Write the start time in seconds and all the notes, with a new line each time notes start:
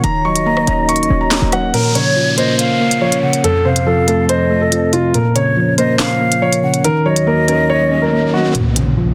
Already playing: C#5
0.04 D#1 D#3 D#4 F#4 A#5, closed hi-hat
0.25 F#3 D#5 C#6
0.36 closed hi-hat
0.46 A#3 A#5
0.57 cross-stick
0.67 D#1 C#4 A#5, closed hi-hat
0.89 C#6, closed hi-hat
0.96 closed hi-hat
1.03 closed hi-hat
1.10 D#1 C#4
1.21 A#5
1.31 A#3, snare, clap, closed hi-hat
1.42 D#1
1.52 F#3 F#5, cross-stick, closed hi-hat
1.74 A#2 F3 C#4 A#4, closed hi-hat, downlifter
1.95 C#3 C#5, closed hi-hat
2.16 F3
2.38 A#3 C5 D#5, closed hi-hat
2.59 F5, closed hi-hat
2.80 A#3
2.91 closed hi-hat
3.02 F3 C#5
3.12 closed hi-hat
3.23 C#3 F#5
3.33 closed hi-hat
3.44 F2 C4 A4, closed hi-hat
3.65 C3 C5 F5
3.76 closed hi-hat
3.87 F3 A4
4.08 A3 A4, closed hi-hat
4.29 C5 D#5, closed hi-hat
4.50 A3
4.61 A4
4.72 F3, closed hi-hat
4.93 C3 F4, closed hi-hat
5.14 A#2 C#4 A#4, closed hi-hat
5.36 C#3 C#5, closed hi-hat
5.57 F3
5.78 A#3 C5 D#5, closed hi-hat
5.99 F5, snare, clap, closed hi-hat
6.21 A#3
6.32 closed hi-hat
6.42 F3 C#5
6.53 closed hi-hat
6.63 C#3 F#5
6.74 closed hi-hat
6.84 D#2 D#3 F#4 A#4 C#5, closed hi-hat, riser
7.06 F#3 C#5 D#5
7.16 closed hi-hat
7.27 A#3 A#4
7.48 C#4 A#4, closed hi-hat
7.70 C#5
7.91 C#4
8.02 A#4
8.12 A#3
8.33 F#3 F#4
8.55 A#2, closed hi-hat, impact
8.76 C#3, closed hi-hat
8.97 F3